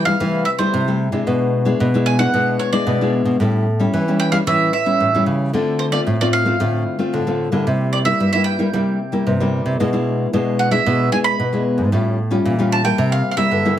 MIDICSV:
0, 0, Header, 1, 4, 480
1, 0, Start_track
1, 0, Tempo, 532387
1, 1148, Time_signature, 4, 2, 24, 8
1, 12433, End_track
2, 0, Start_track
2, 0, Title_t, "Mandolin"
2, 0, Program_c, 0, 25
2, 48, Note_on_c, 0, 77, 90
2, 403, Note_off_c, 0, 77, 0
2, 407, Note_on_c, 0, 76, 76
2, 452, Note_off_c, 0, 76, 0
2, 527, Note_on_c, 0, 72, 74
2, 871, Note_off_c, 0, 72, 0
2, 1857, Note_on_c, 0, 80, 89
2, 1971, Note_off_c, 0, 80, 0
2, 1974, Note_on_c, 0, 78, 91
2, 2339, Note_on_c, 0, 73, 68
2, 2353, Note_off_c, 0, 78, 0
2, 2454, Note_off_c, 0, 73, 0
2, 2457, Note_on_c, 0, 74, 74
2, 2798, Note_off_c, 0, 74, 0
2, 3783, Note_on_c, 0, 79, 88
2, 3891, Note_off_c, 0, 79, 0
2, 3894, Note_on_c, 0, 77, 88
2, 3939, Note_off_c, 0, 77, 0
2, 4032, Note_on_c, 0, 76, 90
2, 4255, Note_off_c, 0, 76, 0
2, 4266, Note_on_c, 0, 76, 75
2, 4715, Note_off_c, 0, 76, 0
2, 5221, Note_on_c, 0, 72, 67
2, 5266, Note_off_c, 0, 72, 0
2, 5339, Note_on_c, 0, 74, 88
2, 5406, Note_off_c, 0, 74, 0
2, 5600, Note_on_c, 0, 74, 81
2, 5645, Note_off_c, 0, 74, 0
2, 5708, Note_on_c, 0, 77, 93
2, 6635, Note_off_c, 0, 77, 0
2, 7147, Note_on_c, 0, 74, 71
2, 7192, Note_off_c, 0, 74, 0
2, 7259, Note_on_c, 0, 76, 86
2, 7489, Note_off_c, 0, 76, 0
2, 7507, Note_on_c, 0, 76, 82
2, 7608, Note_off_c, 0, 76, 0
2, 7612, Note_on_c, 0, 79, 89
2, 8546, Note_off_c, 0, 79, 0
2, 9550, Note_on_c, 0, 78, 75
2, 9657, Note_off_c, 0, 78, 0
2, 9661, Note_on_c, 0, 76, 72
2, 10000, Note_off_c, 0, 76, 0
2, 10027, Note_on_c, 0, 80, 78
2, 10072, Note_off_c, 0, 80, 0
2, 10137, Note_on_c, 0, 83, 99
2, 10478, Note_off_c, 0, 83, 0
2, 11472, Note_on_c, 0, 81, 92
2, 11579, Note_off_c, 0, 81, 0
2, 11583, Note_on_c, 0, 79, 82
2, 11827, Note_off_c, 0, 79, 0
2, 11830, Note_on_c, 0, 77, 71
2, 11994, Note_off_c, 0, 77, 0
2, 12005, Note_on_c, 0, 77, 54
2, 12050, Note_off_c, 0, 77, 0
2, 12054, Note_on_c, 0, 76, 74
2, 12394, Note_off_c, 0, 76, 0
2, 12433, End_track
3, 0, Start_track
3, 0, Title_t, "Nylon-string guitar"
3, 0, Program_c, 1, 24
3, 0, Note_on_c, 1, 48, 52
3, 52, Note_on_c, 1, 55, 64
3, 56, Note_on_c, 1, 57, 63
3, 60, Note_on_c, 1, 64, 66
3, 141, Note_off_c, 1, 55, 0
3, 143, Note_off_c, 1, 57, 0
3, 145, Note_off_c, 1, 64, 0
3, 161, Note_off_c, 1, 48, 0
3, 184, Note_on_c, 1, 48, 52
3, 188, Note_on_c, 1, 55, 54
3, 193, Note_on_c, 1, 57, 57
3, 194, Note_on_c, 1, 64, 59
3, 412, Note_off_c, 1, 55, 0
3, 413, Note_off_c, 1, 57, 0
3, 416, Note_off_c, 1, 64, 0
3, 528, Note_on_c, 1, 55, 66
3, 534, Note_on_c, 1, 57, 64
3, 536, Note_on_c, 1, 64, 70
3, 643, Note_off_c, 1, 48, 0
3, 660, Note_on_c, 1, 48, 53
3, 740, Note_off_c, 1, 55, 0
3, 741, Note_off_c, 1, 57, 0
3, 743, Note_off_c, 1, 64, 0
3, 791, Note_on_c, 1, 55, 53
3, 795, Note_on_c, 1, 57, 63
3, 795, Note_on_c, 1, 64, 58
3, 991, Note_off_c, 1, 55, 0
3, 992, Note_off_c, 1, 57, 0
3, 993, Note_off_c, 1, 64, 0
3, 1010, Note_on_c, 1, 56, 58
3, 1013, Note_on_c, 1, 62, 57
3, 1015, Note_on_c, 1, 64, 62
3, 1120, Note_off_c, 1, 48, 0
3, 1141, Note_on_c, 1, 47, 57
3, 1461, Note_off_c, 1, 56, 0
3, 1462, Note_off_c, 1, 62, 0
3, 1463, Note_off_c, 1, 64, 0
3, 1490, Note_on_c, 1, 56, 60
3, 1493, Note_on_c, 1, 62, 59
3, 1499, Note_on_c, 1, 64, 73
3, 1600, Note_off_c, 1, 47, 0
3, 1626, Note_on_c, 1, 47, 55
3, 1701, Note_off_c, 1, 56, 0
3, 1702, Note_off_c, 1, 62, 0
3, 1704, Note_off_c, 1, 64, 0
3, 1750, Note_on_c, 1, 56, 61
3, 1756, Note_on_c, 1, 62, 69
3, 1760, Note_on_c, 1, 64, 80
3, 1951, Note_off_c, 1, 56, 0
3, 1953, Note_off_c, 1, 62, 0
3, 1956, Note_off_c, 1, 64, 0
3, 1972, Note_on_c, 1, 56, 59
3, 1976, Note_on_c, 1, 62, 62
3, 1981, Note_on_c, 1, 64, 69
3, 2062, Note_off_c, 1, 56, 0
3, 2064, Note_off_c, 1, 62, 0
3, 2065, Note_off_c, 1, 64, 0
3, 2084, Note_off_c, 1, 47, 0
3, 2108, Note_on_c, 1, 47, 57
3, 2111, Note_on_c, 1, 56, 47
3, 2114, Note_on_c, 1, 62, 51
3, 2120, Note_on_c, 1, 64, 60
3, 2431, Note_off_c, 1, 56, 0
3, 2433, Note_off_c, 1, 62, 0
3, 2435, Note_off_c, 1, 64, 0
3, 2460, Note_on_c, 1, 56, 63
3, 2462, Note_on_c, 1, 62, 60
3, 2465, Note_on_c, 1, 64, 60
3, 2565, Note_off_c, 1, 47, 0
3, 2590, Note_on_c, 1, 47, 55
3, 2667, Note_off_c, 1, 56, 0
3, 2667, Note_off_c, 1, 62, 0
3, 2668, Note_off_c, 1, 64, 0
3, 2717, Note_on_c, 1, 56, 64
3, 2723, Note_on_c, 1, 62, 58
3, 2723, Note_on_c, 1, 64, 63
3, 3035, Note_off_c, 1, 56, 0
3, 3037, Note_off_c, 1, 62, 0
3, 3038, Note_off_c, 1, 64, 0
3, 3046, Note_off_c, 1, 47, 0
3, 3074, Note_on_c, 1, 45, 55
3, 3077, Note_on_c, 1, 55, 61
3, 3078, Note_on_c, 1, 61, 57
3, 3085, Note_on_c, 1, 64, 63
3, 3298, Note_off_c, 1, 55, 0
3, 3300, Note_off_c, 1, 61, 0
3, 3301, Note_off_c, 1, 64, 0
3, 3422, Note_on_c, 1, 55, 60
3, 3428, Note_on_c, 1, 61, 62
3, 3433, Note_on_c, 1, 64, 61
3, 3528, Note_off_c, 1, 45, 0
3, 3557, Note_on_c, 1, 52, 51
3, 3629, Note_off_c, 1, 55, 0
3, 3630, Note_off_c, 1, 61, 0
3, 3633, Note_off_c, 1, 64, 0
3, 3678, Note_on_c, 1, 55, 66
3, 3682, Note_on_c, 1, 61, 65
3, 3686, Note_on_c, 1, 64, 73
3, 3876, Note_off_c, 1, 55, 0
3, 3878, Note_off_c, 1, 61, 0
3, 3880, Note_off_c, 1, 64, 0
3, 3896, Note_on_c, 1, 55, 66
3, 3902, Note_on_c, 1, 61, 71
3, 3906, Note_on_c, 1, 64, 66
3, 3985, Note_off_c, 1, 55, 0
3, 3988, Note_off_c, 1, 61, 0
3, 3990, Note_off_c, 1, 64, 0
3, 4010, Note_off_c, 1, 52, 0
3, 4031, Note_on_c, 1, 45, 56
3, 4033, Note_on_c, 1, 55, 52
3, 4035, Note_on_c, 1, 61, 54
3, 4041, Note_on_c, 1, 64, 54
3, 4257, Note_off_c, 1, 55, 0
3, 4259, Note_off_c, 1, 61, 0
3, 4260, Note_off_c, 1, 64, 0
3, 4381, Note_on_c, 1, 55, 56
3, 4383, Note_on_c, 1, 61, 61
3, 4387, Note_on_c, 1, 64, 62
3, 4488, Note_off_c, 1, 45, 0
3, 4515, Note_on_c, 1, 52, 51
3, 4588, Note_off_c, 1, 55, 0
3, 4589, Note_off_c, 1, 61, 0
3, 4591, Note_off_c, 1, 64, 0
3, 4638, Note_on_c, 1, 55, 63
3, 4646, Note_on_c, 1, 61, 67
3, 4647, Note_on_c, 1, 64, 62
3, 4958, Note_off_c, 1, 55, 0
3, 4959, Note_off_c, 1, 61, 0
3, 4961, Note_off_c, 1, 64, 0
3, 4970, Note_off_c, 1, 52, 0
3, 4993, Note_on_c, 1, 50, 58
3, 4995, Note_on_c, 1, 57, 62
3, 5000, Note_on_c, 1, 65, 57
3, 5001, Note_on_c, 1, 60, 55
3, 5315, Note_off_c, 1, 57, 0
3, 5317, Note_off_c, 1, 60, 0
3, 5318, Note_off_c, 1, 65, 0
3, 5343, Note_on_c, 1, 57, 59
3, 5346, Note_on_c, 1, 60, 57
3, 5350, Note_on_c, 1, 65, 73
3, 5449, Note_off_c, 1, 50, 0
3, 5474, Note_on_c, 1, 45, 54
3, 5550, Note_off_c, 1, 57, 0
3, 5552, Note_off_c, 1, 60, 0
3, 5552, Note_off_c, 1, 65, 0
3, 5603, Note_on_c, 1, 57, 63
3, 5608, Note_on_c, 1, 60, 66
3, 5610, Note_on_c, 1, 65, 70
3, 5800, Note_off_c, 1, 57, 0
3, 5801, Note_off_c, 1, 60, 0
3, 5803, Note_off_c, 1, 65, 0
3, 5819, Note_on_c, 1, 57, 61
3, 5824, Note_on_c, 1, 60, 66
3, 5830, Note_on_c, 1, 65, 60
3, 5908, Note_off_c, 1, 57, 0
3, 5910, Note_off_c, 1, 60, 0
3, 5912, Note_off_c, 1, 65, 0
3, 5930, Note_off_c, 1, 45, 0
3, 5953, Note_on_c, 1, 50, 50
3, 5953, Note_on_c, 1, 57, 52
3, 5957, Note_on_c, 1, 60, 52
3, 5961, Note_on_c, 1, 65, 60
3, 6274, Note_off_c, 1, 57, 0
3, 6277, Note_off_c, 1, 60, 0
3, 6279, Note_off_c, 1, 65, 0
3, 6299, Note_on_c, 1, 57, 60
3, 6304, Note_on_c, 1, 60, 56
3, 6309, Note_on_c, 1, 65, 58
3, 6410, Note_off_c, 1, 50, 0
3, 6428, Note_on_c, 1, 45, 55
3, 6508, Note_off_c, 1, 57, 0
3, 6510, Note_off_c, 1, 60, 0
3, 6513, Note_off_c, 1, 65, 0
3, 6554, Note_on_c, 1, 57, 64
3, 6559, Note_on_c, 1, 60, 62
3, 6562, Note_on_c, 1, 65, 60
3, 6755, Note_off_c, 1, 57, 0
3, 6758, Note_off_c, 1, 60, 0
3, 6759, Note_off_c, 1, 65, 0
3, 6778, Note_on_c, 1, 55, 54
3, 6783, Note_on_c, 1, 58, 63
3, 6788, Note_on_c, 1, 64, 58
3, 6887, Note_off_c, 1, 45, 0
3, 6914, Note_on_c, 1, 48, 54
3, 7227, Note_off_c, 1, 55, 0
3, 7230, Note_off_c, 1, 58, 0
3, 7232, Note_off_c, 1, 64, 0
3, 7258, Note_on_c, 1, 55, 60
3, 7262, Note_on_c, 1, 58, 61
3, 7268, Note_on_c, 1, 64, 67
3, 7370, Note_off_c, 1, 48, 0
3, 7399, Note_on_c, 1, 43, 57
3, 7467, Note_off_c, 1, 55, 0
3, 7469, Note_off_c, 1, 58, 0
3, 7472, Note_off_c, 1, 64, 0
3, 7521, Note_on_c, 1, 55, 58
3, 7525, Note_on_c, 1, 58, 58
3, 7529, Note_on_c, 1, 64, 76
3, 7719, Note_off_c, 1, 55, 0
3, 7720, Note_off_c, 1, 58, 0
3, 7723, Note_off_c, 1, 64, 0
3, 7744, Note_on_c, 1, 55, 62
3, 7747, Note_on_c, 1, 58, 61
3, 7752, Note_on_c, 1, 64, 63
3, 7830, Note_off_c, 1, 55, 0
3, 7832, Note_off_c, 1, 58, 0
3, 7833, Note_off_c, 1, 64, 0
3, 7852, Note_off_c, 1, 43, 0
3, 7878, Note_on_c, 1, 48, 49
3, 7880, Note_on_c, 1, 58, 62
3, 7882, Note_on_c, 1, 55, 54
3, 7887, Note_on_c, 1, 64, 58
3, 8100, Note_off_c, 1, 55, 0
3, 8103, Note_off_c, 1, 58, 0
3, 8104, Note_off_c, 1, 64, 0
3, 8223, Note_on_c, 1, 55, 58
3, 8229, Note_on_c, 1, 58, 69
3, 8231, Note_on_c, 1, 64, 63
3, 8332, Note_off_c, 1, 48, 0
3, 8357, Note_on_c, 1, 43, 54
3, 8430, Note_off_c, 1, 55, 0
3, 8432, Note_off_c, 1, 58, 0
3, 8434, Note_off_c, 1, 64, 0
3, 8478, Note_on_c, 1, 55, 64
3, 8483, Note_on_c, 1, 58, 63
3, 8488, Note_on_c, 1, 64, 65
3, 8797, Note_off_c, 1, 55, 0
3, 8800, Note_off_c, 1, 58, 0
3, 8801, Note_off_c, 1, 64, 0
3, 8811, Note_off_c, 1, 43, 0
3, 8834, Note_on_c, 1, 47, 57
3, 8836, Note_on_c, 1, 56, 61
3, 8837, Note_on_c, 1, 62, 56
3, 8844, Note_on_c, 1, 64, 69
3, 8914, Note_off_c, 1, 56, 0
3, 8917, Note_off_c, 1, 62, 0
3, 8919, Note_off_c, 1, 64, 0
3, 8951, Note_on_c, 1, 56, 56
3, 8955, Note_on_c, 1, 62, 57
3, 8961, Note_on_c, 1, 64, 67
3, 9273, Note_off_c, 1, 56, 0
3, 9276, Note_off_c, 1, 62, 0
3, 9277, Note_off_c, 1, 64, 0
3, 9289, Note_off_c, 1, 47, 0
3, 9314, Note_on_c, 1, 47, 56
3, 9317, Note_on_c, 1, 56, 58
3, 9318, Note_on_c, 1, 62, 59
3, 9323, Note_on_c, 1, 64, 64
3, 9634, Note_off_c, 1, 56, 0
3, 9636, Note_off_c, 1, 62, 0
3, 9639, Note_off_c, 1, 64, 0
3, 9657, Note_on_c, 1, 56, 66
3, 9661, Note_on_c, 1, 62, 56
3, 9667, Note_on_c, 1, 64, 76
3, 9746, Note_off_c, 1, 56, 0
3, 9748, Note_off_c, 1, 62, 0
3, 9750, Note_off_c, 1, 64, 0
3, 9769, Note_off_c, 1, 47, 0
3, 9791, Note_on_c, 1, 47, 54
3, 9793, Note_on_c, 1, 56, 58
3, 9794, Note_on_c, 1, 62, 53
3, 9799, Note_on_c, 1, 64, 59
3, 9992, Note_off_c, 1, 56, 0
3, 9994, Note_off_c, 1, 62, 0
3, 9997, Note_off_c, 1, 64, 0
3, 10025, Note_on_c, 1, 56, 55
3, 10030, Note_on_c, 1, 62, 55
3, 10034, Note_on_c, 1, 64, 55
3, 10247, Note_off_c, 1, 47, 0
3, 10253, Note_off_c, 1, 56, 0
3, 10255, Note_off_c, 1, 62, 0
3, 10257, Note_off_c, 1, 64, 0
3, 10265, Note_on_c, 1, 47, 55
3, 10392, Note_on_c, 1, 56, 61
3, 10399, Note_on_c, 1, 62, 58
3, 10401, Note_on_c, 1, 64, 59
3, 10723, Note_off_c, 1, 47, 0
3, 10732, Note_off_c, 1, 56, 0
3, 10734, Note_off_c, 1, 62, 0
3, 10736, Note_off_c, 1, 64, 0
3, 10749, Note_on_c, 1, 45, 55
3, 10754, Note_on_c, 1, 55, 63
3, 10754, Note_on_c, 1, 61, 63
3, 10760, Note_on_c, 1, 65, 59
3, 10975, Note_off_c, 1, 55, 0
3, 10977, Note_off_c, 1, 61, 0
3, 10978, Note_off_c, 1, 65, 0
3, 11095, Note_on_c, 1, 55, 56
3, 11099, Note_on_c, 1, 61, 68
3, 11103, Note_on_c, 1, 65, 64
3, 11205, Note_off_c, 1, 45, 0
3, 11229, Note_on_c, 1, 52, 61
3, 11303, Note_off_c, 1, 55, 0
3, 11306, Note_off_c, 1, 61, 0
3, 11306, Note_off_c, 1, 65, 0
3, 11348, Note_on_c, 1, 55, 64
3, 11354, Note_on_c, 1, 61, 66
3, 11357, Note_on_c, 1, 65, 77
3, 11550, Note_off_c, 1, 55, 0
3, 11551, Note_off_c, 1, 61, 0
3, 11554, Note_off_c, 1, 65, 0
3, 11575, Note_on_c, 1, 55, 62
3, 11578, Note_on_c, 1, 58, 61
3, 11581, Note_on_c, 1, 64, 71
3, 11684, Note_off_c, 1, 52, 0
3, 11707, Note_on_c, 1, 48, 59
3, 12022, Note_off_c, 1, 55, 0
3, 12023, Note_off_c, 1, 58, 0
3, 12025, Note_off_c, 1, 64, 0
3, 12053, Note_on_c, 1, 55, 58
3, 12061, Note_on_c, 1, 58, 56
3, 12062, Note_on_c, 1, 64, 59
3, 12162, Note_off_c, 1, 48, 0
3, 12189, Note_on_c, 1, 43, 46
3, 12262, Note_off_c, 1, 55, 0
3, 12263, Note_off_c, 1, 58, 0
3, 12265, Note_off_c, 1, 64, 0
3, 12308, Note_on_c, 1, 55, 59
3, 12313, Note_on_c, 1, 58, 64
3, 12318, Note_on_c, 1, 64, 69
3, 12433, Note_off_c, 1, 43, 0
3, 12433, Note_off_c, 1, 55, 0
3, 12433, Note_off_c, 1, 58, 0
3, 12433, Note_off_c, 1, 64, 0
3, 12433, End_track
4, 0, Start_track
4, 0, Title_t, "Nylon-string guitar"
4, 0, Program_c, 2, 24
4, 0, Note_on_c, 2, 52, 90
4, 113, Note_off_c, 2, 52, 0
4, 183, Note_on_c, 2, 52, 100
4, 389, Note_off_c, 2, 52, 0
4, 1013, Note_on_c, 2, 48, 69
4, 1121, Note_off_c, 2, 48, 0
4, 2934, Note_on_c, 2, 47, 79
4, 3043, Note_off_c, 2, 47, 0
4, 4029, Note_on_c, 2, 52, 96
4, 4234, Note_off_c, 2, 52, 0
4, 4511, Note_on_c, 2, 45, 71
4, 4727, Note_off_c, 2, 45, 0
4, 4745, Note_on_c, 2, 49, 78
4, 4964, Note_off_c, 2, 49, 0
4, 5951, Note_on_c, 2, 45, 96
4, 6156, Note_off_c, 2, 45, 0
4, 6433, Note_on_c, 2, 50, 83
4, 6739, Note_off_c, 2, 50, 0
4, 6782, Note_on_c, 2, 50, 73
4, 6889, Note_off_c, 2, 50, 0
4, 7396, Note_on_c, 2, 55, 88
4, 7803, Note_off_c, 2, 55, 0
4, 8354, Note_on_c, 2, 48, 87
4, 8659, Note_off_c, 2, 48, 0
4, 8706, Note_on_c, 2, 48, 74
4, 8811, Note_off_c, 2, 48, 0
4, 10619, Note_on_c, 2, 44, 70
4, 10725, Note_off_c, 2, 44, 0
4, 11229, Note_on_c, 2, 46, 92
4, 11636, Note_off_c, 2, 46, 0
4, 12184, Note_on_c, 2, 50, 81
4, 12400, Note_off_c, 2, 50, 0
4, 12433, End_track
0, 0, End_of_file